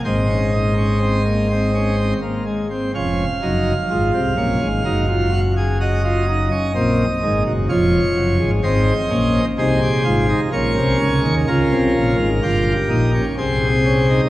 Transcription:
0.04 G#1 G#2 C4 C5 D#5
0.29 C#4
0.52 D#4
0.77 C#4
1.01 C4
1.26 A#3
1.50 C4
1.75 C#4
1.98 C4
2.22 A#3
2.46 G#3
2.70 C4
2.94 F1 F2 C#4 F5
3.42 F#1 F#2 D#4
3.90 G#1 G#2 F4
4.14 C2 C3
4.37 A#1 A#2 C#4
4.61 G#1 G#2
4.85 F#1 F#2 D#4
5.09 F4
5.33 F#4
5.57 G#4
5.81 F#4 D#5
6.04 F4
6.28 D#4
6.51 C#4
6.75 A#1 A#2 C4
7.23 G#1 G#2 D#4
7.47 F#1 F#2
7.69 F1 F2 F4 C#5
8.17 F#1 F#2
8.39 G#1 G#2
8.63 G#1 G#2 C4 C5 D#5
9.10 A#1 A#2 C#4
9.58 C2 C3 D#4 G#4 C5
9.82 G4
10.05 G#1 G#2 F4
10.29 D#4
10.52 A#1 A#2 C#4 A#4 C#5
10.76 C2 C3
11.01 C#2 C#3
11.24 D#2 D#3
11.48 C#2 C#3 F4 A#4
11.71 C2 C3
11.95 A#1 A#2
12.19 G#1 G#2
12.43 G1 G2 F4 G4
12.90 A#1 A#2 D#4
13.14 C#4
13.38 C2 C3 C4 G#4 C5
13.85 C#4
14.10 D#4

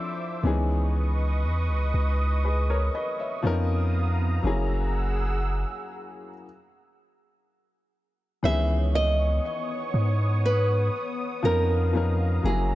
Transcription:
Already playing: F3 C4 D4 E4 A4 A#4 C5 C#5 E5 D6 E6
0.43 C#2 D#3 B3 C#4 D#4 B4 D#5 C#6 D#6
0.47 E3 G#4
1.44 E2
1.69 C#2
1.94 C#2
2.45 G#4 B4
2.70 A#4 C#5
2.95 B4 D#5
3.20 C#5 E5
3.42 F2 F3 B3 C#4 D#4 F5 A#5 D#6
3.47 A#4
4.43 F#1 F#3 A#3 C#4 E4 G#4 F#5 E6
4.47 G#4
8.43 C#2 D#3 E3 B3 C#4 C#5 E5 C#6 D#6
8.47 G#4
8.95 D#5
9.94 G#2
10.46 B4
11.43 F2 F3 B3 C#4 D#4 A#4 F5 A#5
11.47 A#4
11.93 F3 B3 C#4 D#4
11.97 A#4
12.43 F#1 F#3 A#3 C#4 E4 G#4 F#5 E6
12.47 G#4

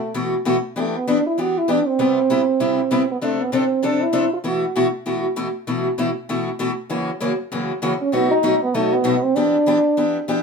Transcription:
Already playing: A3
0.14 B2 E3 A3 E4 F#4
0.45 B2 E3 A3 E4 F#4
0.76 E3 A3 B3 D4 G4
0.97 B3
1.08 E3 B3 D4 G4
1.27 E4
1.38 E3 B3 D4 F#4 G4
1.58 E4
1.68 E3 B3 D4 G4
1.88 C4
1.99 C3 G3 B3 E4 G4
2.30 C3 G3 B3 E4 G4
2.60 C3 G3 B3 E4 G4
2.91 C3 G3 B3 E4 G4
3.11 B3
3.21 C3 F3 A3 C4 D4 A4
3.42 B3
3.52 C3 F3 C4 D4 A4
3.83 C3 F3 C4 D4 A4
4.02 E4
4.13 C3 F3 C4 D4 A4
4.33 F4
4.44 B2 E3 A3 E4 F#4
4.76 B2 E3 A3 E4 F#4
5.06 B2 E3 A3 E4 F#4
5.36 B2 E3 A3 E4 F#4
5.67 B2 E3 A3 E4 F#4
5.98 B2 E3 A3 E4 F#4
6.29 B2 E3 A3 E4 F#4
6.59 B2 E3 A3 E4 F#4
6.90 F#2 C#3 E3 A#3 C#4 F#4
7.20 F#2 C#3 E3 A#3 C#4 F#4
7.52 F#2 C#3 E3 A#3 C#4 F#4
7.82 F#2 C#3 E3 A#3 C#4 F#4
8.01 C#4
8.12 B2 F#3 A3 B3 D#4 F#4
8.31 D#4
8.43 B2 F#3 A3 D#4 F#4
8.63 B3
8.74 B2 F#3 A3 D#4 F#4
8.93 B3
9.04 B2 F#3 A3 D#4 F#4
9.23 C4
9.35 E3 B3 D4 G4
9.66 E3 B3 D4 G4
9.97 E3 B3 D4 G4
10.28 E3 B3 D4 G4

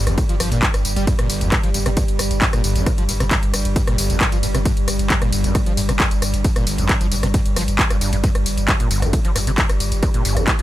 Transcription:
Already playing: G2 G3
0.07 G1 G2, cross-stick, closed hi-hat, ride, tambourine
0.18 A#2, kick, closed hi-hat, ride, tambourine
0.29 G1 F3, closed hi-hat, ride
0.40 G1 F3, cross-stick, open hi-hat, ride, tambourine
0.52 G1 A#2, closed hi-hat, ride, tambourine
0.62 G2, kick, clap, closed hi-hat, ride, tambourine
0.74 G1, cross-stick, closed hi-hat, ride, tambourine
0.85 G1, open hi-hat, ride, tambourine
0.96 G1 G3, closed hi-hat, ride, tambourine
1.07 G2, kick, closed hi-hat, ride, tambourine
1.19 G1 A#2, cross-stick, closed hi-hat, ride
1.30 G1, open hi-hat, ride, tambourine
1.41 G1 G2, closed hi-hat, ride, tambourine
1.52 A#2, kick, cross-stick, clap, closed hi-hat, ride, tambourine
1.63 G1 F3, closed hi-hat, ride
1.74 G1 G2, open hi-hat, ride, tambourine
1.86 G1 C3, cross-stick, closed hi-hat, ride, tambourine
1.97 G2, kick, closed hi-hat, ride, tambourine
2.08 G1, closed hi-hat, ride
2.19 G1, cross-stick, open hi-hat, ride, tambourine
2.31 G1, closed hi-hat, ride, tambourine
2.42 G2, kick, clap, closed hi-hat, ride, tambourine
2.53 G1 A#2, cross-stick, closed hi-hat, ride, tambourine
2.64 G1, open hi-hat, ride, tambourine
2.75 G1 G2, closed hi-hat, ride, tambourine
2.86 A#2, kick, cross-stick, closed hi-hat, ride, tambourine
2.98 G1 F3, closed hi-hat, ride
3.09 G1 G2, open hi-hat, ride, tambourine
3.20 G1 C3, cross-stick, closed hi-hat, ride, tambourine
3.31 G2, kick, clap, closed hi-hat, ride, tambourine
3.43 G1, closed hi-hat, ride
3.54 G1, cross-stick, open hi-hat, ride, tambourine
3.65 G1, closed hi-hat, ride, tambourine
3.76 G2, kick, closed hi-hat, ride, tambourine
3.87 G1 A#2, cross-stick, closed hi-hat, ride
3.98 G1, open hi-hat, ride, tambourine
4.10 G1 G2, closed hi-hat, ride, tambourine
4.21 A#2, kick, cross-stick, clap, closed hi-hat, ride, tambourine
4.32 G1 F3, closed hi-hat, ride, tambourine
4.43 G1 G2, open hi-hat, ride, tambourine
4.55 G1 C3, cross-stick, closed hi-hat, ride, tambourine
4.65 G2, kick, closed hi-hat, ride, tambourine
4.77 G1, closed hi-hat, ride
4.88 G1, cross-stick, open hi-hat, ride, tambourine
4.99 G1, closed hi-hat, ride, tambourine
5.10 G2, kick, clap, closed hi-hat, ride, tambourine
5.22 G1 A#2, cross-stick, closed hi-hat, ride
5.33 G1, open hi-hat, ride, tambourine
5.44 G1 G2, closed hi-hat, ride, tambourine
5.55 A#2, kick, cross-stick, closed hi-hat, ride, tambourine
5.66 G1 F3, closed hi-hat, ride
5.77 G1 G2, open hi-hat, ride, tambourine
5.89 G1 C3, cross-stick, closed hi-hat, ride, tambourine
6.00 G2, kick, clap, closed hi-hat, ride, tambourine
6.11 G1, closed hi-hat, ride, tambourine
6.22 G1, cross-stick, open hi-hat, ride, tambourine
6.34 G1, closed hi-hat, ride, tambourine
6.44 G2, kick, closed hi-hat, ride, tambourine
6.56 G1 A#2, cross-stick, closed hi-hat, ride, tambourine
6.67 G1, open hi-hat, ride, tambourine
6.78 G1 G2, closed hi-hat, ride, tambourine
6.89 A#2, kick, cross-stick, clap, closed hi-hat, ride, tambourine
7.01 G1 F3, closed hi-hat, ride, tambourine
7.12 G1 G2, open hi-hat, ride, tambourine
7.23 G1 C3, cross-stick, closed hi-hat, ride, tambourine
7.34 G2, kick, closed hi-hat, ride, tambourine
7.46 G1, closed hi-hat, ride
7.56 G1 F3, cross-stick, open hi-hat, ride, tambourine
7.68 G1, closed hi-hat, ride, tambourine
7.79 G2, kick, clap, closed hi-hat, ride, tambourine
7.90 G1 G2, cross-stick, closed hi-hat, ride, tambourine
8.01 G1 G2, open hi-hat, ride, tambourine
8.13 G1 G2, closed hi-hat, ride, tambourine
8.24 G2 G3, kick, closed hi-hat, ride, tambourine
8.35 G1, cross-stick, closed hi-hat, ride
8.46 G1, open hi-hat, ride, tambourine
8.58 G1, closed hi-hat, ride, tambourine
8.68 G2, kick, cross-stick, clap, closed hi-hat, ride, tambourine
8.80 G1 A#2, closed hi-hat, ride
8.91 G1, open hi-hat, ride, tambourine
9.02 G1 G2, cross-stick, closed hi-hat, ride, tambourine
9.13 A#2, kick, closed hi-hat, ride, tambourine
9.25 G1 F3, closed hi-hat, ride
9.36 G1 G2, cross-stick, open hi-hat, ride, tambourine
9.47 G1 C3, closed hi-hat, ride, tambourine
9.58 G2, kick, clap, closed hi-hat, ride, tambourine
9.69 G1, cross-stick, closed hi-hat, ride, tambourine
9.80 G1, open hi-hat, ride, tambourine
9.92 G1, closed hi-hat, ride, tambourine
10.03 G2, kick, cross-stick, closed hi-hat, ride, tambourine
10.14 G1 A#2, closed hi-hat, ride
10.25 G1, open hi-hat, ride, tambourine
10.37 G1 G2, cross-stick, closed hi-hat, ride, tambourine
10.47 A#2, kick, clap, closed hi-hat, ride, tambourine
10.59 G1 F3, closed hi-hat, ride

